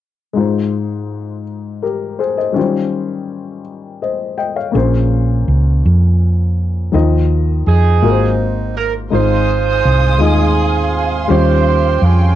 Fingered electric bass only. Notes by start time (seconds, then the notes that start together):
4.75 A#1
5.48 C#2
5.85 F2
6.94 D#2
7.67 F2
8.02 G#1
9.13 G#1
9.85 C2
10.21 D#2
11.30 D#2
12.02 F2